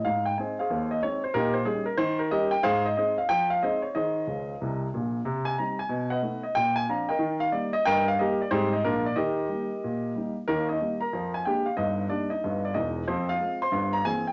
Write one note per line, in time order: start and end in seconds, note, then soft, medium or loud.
0.05 0.33 G#2 medium
0.05 0.23 F5 medium
0.25 0.36 G5 medium
0.38 0.56 G#3 soft
0.38 0.57 C4 soft
0.38 0.57 D#4 soft
0.38 0.59 C5 soft
0.38 0.59 D#5 soft
0.38 0.56 G#5 medium
0.59 0.90 G#4 medium
0.59 0.90 C5 medium
0.59 0.87 F5 medium
0.70 0.98 D#2 medium
0.91 1.01 D#5 medium
1.03 1.21 G#3 soft
1.03 1.21 C4 medium
1.03 1.22 D#4 soft
1.03 1.21 C#5 medium
1.24 1.34 C5 medium
1.34 1.63 A#2 medium
1.34 1.56 D#4 medium
1.34 1.56 G4 medium
1.34 1.53 A#4 loud
1.53 1.65 C5 medium
1.65 1.84 G3 soft
1.65 1.85 C#4 soft
1.65 1.85 D#4 soft
1.65 1.85 G#4 medium
1.86 1.97 A#4 medium
1.97 2.27 D#3 medium
1.97 2.17 C5 loud
2.19 2.30 A#4 medium
2.31 2.50 G3 soft
2.31 2.50 C#4 soft
2.31 2.50 D#4 medium
2.31 2.53 G4 medium
2.31 2.53 A#4 medium
2.31 2.50 D#5 loud
2.51 2.62 G5 loud
2.63 2.92 G#2 medium
2.63 2.85 G#4 loud
2.63 2.85 C5 loud
2.63 2.83 F5 loud
2.86 2.96 D#5 medium
2.97 3.16 G#3 soft
2.97 3.16 C4 soft
2.97 3.16 D#4 medium
2.97 3.18 G#4 medium
2.97 3.19 C5 medium
2.97 3.16 D#5 medium
3.18 3.29 F5 medium
3.29 3.58 F3 medium
3.29 3.48 G5 loud
3.50 3.61 F5 medium
3.63 3.81 G#3 soft
3.63 3.81 C4 soft
3.63 3.82 D#4 medium
3.63 3.84 G#4 medium
3.63 3.84 C5 medium
3.63 3.82 D#5 medium
3.82 3.93 C#5 medium
3.95 4.24 D#3 medium
3.95 4.90 G#4 medium
3.95 4.90 C5 medium
3.95 4.79 D#5 medium
4.27 4.53 C#2 medium
4.27 4.52 C#3 soft
4.61 4.86 C2 medium
4.61 4.86 C3 medium
4.94 5.19 A#1 soft
4.94 5.18 A#2 medium
5.25 5.54 C3 medium
5.45 5.56 G#5 medium
5.58 5.77 G3 soft
5.58 5.77 C4 soft
5.58 5.77 D#4 soft
5.58 5.77 A#5 medium
5.79 6.08 G#5 medium
5.89 6.18 B2 medium
6.10 6.43 B4 medium
6.10 6.42 D#5 medium
6.10 6.39 F#5 medium
6.22 6.41 A3 soft
6.22 6.42 B3 soft
6.22 6.42 D#4 soft
6.43 6.54 D#5 medium
6.55 6.84 A#2 medium
6.55 6.74 G5 loud
6.76 6.87 G#5 loud
6.89 7.07 F3 soft
6.89 7.08 C4 soft
6.89 7.07 D4 soft
6.89 7.10 D5 medium
6.89 7.09 F5 medium
6.89 7.08 A#5 medium
7.09 7.41 A#4 medium
7.09 7.40 D#5 medium
7.09 7.37 G5 medium
7.19 7.48 D#3 medium
7.40 7.51 F5 loud
7.52 7.71 G3 soft
7.52 7.71 A#3 soft
7.52 7.72 D#4 soft
7.52 7.71 D5 medium
7.73 7.84 D#5 loud
7.85 8.15 G2 medium
7.85 8.07 A#4 loud
7.85 8.07 D#5 medium
7.85 8.05 G5 loud
8.08 8.18 F5 loud
8.19 8.38 G3 soft
8.19 8.39 A#3 medium
8.19 8.38 D#4 soft
8.19 8.41 G4 medium
8.19 8.41 A#4 medium
8.19 8.38 D#5 medium
8.42 8.51 D5 medium
8.51 8.79 G#2 loud
8.51 8.69 G3 medium
8.51 8.70 C4 medium
8.51 8.70 D#4 soft
8.51 8.72 G4 medium
8.51 8.72 G#4 medium
8.51 8.70 C5 loud
8.73 8.83 D#5 medium
8.85 9.13 A#2 medium
8.85 9.03 F3 soft
8.85 9.03 G#3 soft
8.85 9.05 D4 medium
8.85 9.05 F4 medium
8.85 9.03 A#4 loud
9.06 9.16 D5 medium
9.16 9.45 D#3 medium
9.16 10.33 G4 medium
9.16 10.33 A#4 medium
9.16 10.18 D#5 medium
9.49 9.67 G3 soft
9.49 9.68 A#3 soft
9.49 9.69 D#4 soft
9.84 10.11 A#2 medium
10.16 10.34 G3 soft
10.16 10.34 A#3 soft
10.16 10.35 D#4 soft
10.48 10.76 D#2 medium
10.48 10.76 D#3 medium
10.48 10.69 A#3 medium
10.48 10.66 A#4 loud
10.69 10.80 D#4 medium
10.69 10.97 D#5 medium
10.81 10.99 G3 soft
10.81 10.99 A#3 soft
10.81 10.99 D#4 soft
11.01 11.33 A#4 medium
11.01 11.29 A#5 medium
11.13 11.41 F2 medium
11.13 11.41 F3 medium
11.34 11.44 G#5 medium
11.45 11.64 G#3 soft
11.45 11.64 A#3 soft
11.45 11.64 D4 soft
11.45 11.67 G4 medium
11.45 11.64 G5 medium
11.66 11.76 F5 medium
11.77 12.06 G1 medium
11.77 12.05 G2 medium
11.77 12.09 D#4 medium
11.77 12.05 D#5 medium
12.10 12.28 G3 soft
12.10 12.28 A#3 soft
12.10 12.30 D4 medium
12.10 12.28 D#4 soft
12.10 12.28 D5 medium
12.30 12.63 D#4 medium
12.30 12.59 D#5 medium
12.44 12.72 G1 medium
12.44 12.72 G2 medium
12.65 12.74 D5 medium
12.74 13.02 E1 medium
12.74 13.02 E2 medium
12.74 13.06 D#4 medium
12.74 13.03 D#5 medium
13.08 13.36 F2 medium
13.08 13.36 F3 medium
13.08 13.29 C4 medium
13.08 13.27 C5 medium
13.29 13.60 F4 medium
13.29 13.57 F5 loud
13.40 13.58 G#3 soft
13.40 13.59 C4 soft
13.62 13.93 C5 medium
13.62 13.90 C6 medium
13.72 14.01 G1 medium
13.72 14.01 G2 medium
13.93 14.03 A#5 medium
14.05 14.23 E3 soft
14.05 14.24 A#3 soft
14.05 14.24 C4 soft
14.05 14.27 G#4 medium
14.05 14.24 G#5 loud
14.27 14.33 G5 medium